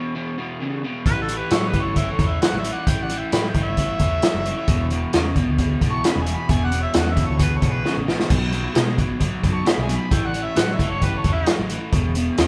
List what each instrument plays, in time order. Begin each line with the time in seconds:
Already playing: overdriven electric guitar E2 B2
0.15 overdriven electric guitar E2 B2
0.38 overdriven electric guitar E2 B2
0.60 overdriven electric guitar E2 C#3
0.83 overdriven electric guitar E2 B2
1.06 picked electric bass A1, overdriven electric guitar A2 E3, lead electric guitar G4, harmonica B4, kick, closed hi-hat
1.22 lead electric guitar F#4, harmonica A4
1.29 overdriven electric guitar A2 E3, closed hi-hat
1.37 lead electric guitar G4, harmonica B4
1.51 picked electric bass A2, overdriven electric guitar A2 F#3, lead electric guitar A4, harmonica C#5, snare, closed hi-hat
1.68 lead electric guitar G4, harmonica B4
1.74 overdriven electric guitar A2 E3, kick, closed hi-hat
1.81 picked electric bass G1, lead electric guitar A4, harmonica C#5
1.96 overdriven electric guitar A2 E3, lead electric guitar C#5, harmonica E5, kick, closed hi-hat
2.11 lead electric guitar A4, harmonica C#5
2.19 picked electric bass E2, overdriven electric guitar A2 E3, kick, closed hi-hat
2.26 lead electric guitar C#5, harmonica E5
2.42 overdriven electric guitar A2 F#3, lead electric guitar C#5, harmonica F#5, snare, closed hi-hat
2.53 picked electric bass A1
2.57 lead electric guitar C#5, harmonica E5
2.64 overdriven electric guitar A2 E3, closed hi-hat
2.72 lead electric guitar D5, harmonica F#5
2.87 picked electric bass A1, overdriven electric guitar A2 E3, lead electric guitar E5, harmonica G5, kick, closed hi-hat
3.03 lead electric guitar D5, harmonica F#5
3.10 overdriven electric guitar A2 E3, closed hi-hat
3.18 lead electric guitar E5, harmonica G5
3.32 picked electric bass A2, overdriven electric guitar A2 F#3, lead electric guitar G5, harmonica B5, snare, closed hi-hat
3.48 lead electric guitar E5, harmonica G5
3.54 overdriven electric guitar A2 E3, kick, closed hi-hat
3.62 lead electric guitar C#5, harmonica E5
3.67 picked electric bass G1
3.77 overdriven electric guitar A2 E3, kick, closed hi-hat
4.00 picked electric bass E2, overdriven electric guitar A2 E3, kick, closed hi-hat
4.22 overdriven electric guitar A2 F#3, snare, closed hi-hat
4.34 picked electric bass F#1
4.46 overdriven electric guitar A2 E3, closed hi-hat
4.68 picked electric bass E1, overdriven electric guitar E2 B2, kick, closed hi-hat
4.90 overdriven electric guitar E2 B2, closed hi-hat
5.13 overdriven electric guitar E2 C#3, picked electric bass E2, snare, closed hi-hat
5.36 overdriven electric guitar E2 B2, kick, closed hi-hat
5.48 picked electric bass D2
5.58 overdriven electric guitar E2 B2, kick, closed hi-hat
5.81 picked electric bass B1, overdriven electric guitar E2 B2, kick, closed hi-hat
5.90 lead electric guitar A5, harmonica C#6
6.04 overdriven electric guitar E2 C#3, lead electric guitar G#5, harmonica B5, snare, closed hi-hat
6.16 picked electric bass E1, lead electric guitar E5
6.22 harmonica G#5
6.26 overdriven electric guitar E2 B2, closed hi-hat
6.34 lead electric guitar G#5, harmonica B5
6.49 picked electric bass E1, overdriven electric guitar E2 B2, lead electric guitar E5, harmonica G#5, kick, closed hi-hat
6.64 lead electric guitar D5, harmonica F#5
6.72 overdriven electric guitar E2 B2, closed hi-hat
6.80 lead electric guitar C#5, harmonica E5
6.94 overdriven electric guitar E2 C#3, picked electric bass E2, lead electric guitar D5, harmonica F#5, snare, closed hi-hat
7.08 lead electric guitar C#5
7.12 overdriven electric guitar E2, harmonica E5
7.17 overdriven electric guitar B2, kick, closed hi-hat
7.24 lead electric guitar A4, harmonica C#5
7.29 picked electric bass D2
7.39 overdriven electric guitar E2 B2, lead electric guitar G#4, harmonica B4, kick, closed hi-hat
7.56 lead electric guitar A4, harmonica C#5
7.62 picked electric bass B1, overdriven electric guitar E2 B2, kick, closed hi-hat
7.70 lead electric guitar G#4, harmonica B4
7.84 overdriven electric guitar E2 C#3, snare
7.97 picked electric bass A1
8.07 overdriven electric guitar E2 B2, snare
8.20 snare
8.30 picked electric bass B1, overdriven electric guitar B2 F#3, kick, closed hi-hat, crash
8.52 overdriven electric guitar B2 F#3, closed hi-hat
8.75 overdriven electric guitar B2 G#3, picked electric bass B2, snare, closed hi-hat
8.98 overdriven electric guitar B2 F#3, kick, closed hi-hat
9.10 picked electric bass A1
9.20 overdriven electric guitar B2 F#3, kick, closed hi-hat
9.43 picked electric bass F#2, overdriven electric guitar B2 F#3, kick, closed hi-hat
9.52 lead electric guitar A5, harmonica C#6
9.66 overdriven electric guitar B2 G#3, lead electric guitar F#5, harmonica B5, snare, closed hi-hat
9.78 picked electric bass B1
9.82 lead electric guitar E5, harmonica G#5
9.89 overdriven electric guitar B2 F#3, closed hi-hat
9.98 lead electric guitar G#5, harmonica B5
10.11 picked electric bass A1, overdriven electric guitar A2 E3, lead electric guitar E5, harmonica G5, kick, closed hi-hat
10.26 lead electric guitar D5, harmonica F#5
10.34 overdriven electric guitar A2 E3, closed hi-hat
10.42 lead electric guitar C#5, harmonica E5
10.56 overdriven electric guitar A2 F#3, picked electric bass A2, lead electric guitar C#5, harmonica F#5, snare, closed hi-hat
10.71 lead electric guitar C#5, harmonica E5
10.79 overdriven electric guitar A2 E3, kick, closed hi-hat
10.87 picked electric bass G1, lead electric guitar A4, harmonica C#5
11.02 overdriven electric guitar A2 E3, lead electric guitar G4, harmonica B4, kick, closed hi-hat
11.17 lead electric guitar A4, harmonica C#5
11.24 picked electric bass E2, overdriven electric guitar A2 E3, kick, closed hi-hat
11.32 lead electric guitar C#4, harmonica E4
11.46 overdriven electric guitar A2 F#3, snare, closed hi-hat
11.59 picked electric bass A1
11.70 overdriven electric guitar A2 E3, closed hi-hat
11.93 picked electric bass E1, overdriven electric guitar E2 B2, kick, closed hi-hat
12.15 overdriven electric guitar E2 B2, closed hi-hat
12.38 picked electric bass E2, overdriven electric guitar E2 C#3, snare, closed hi-hat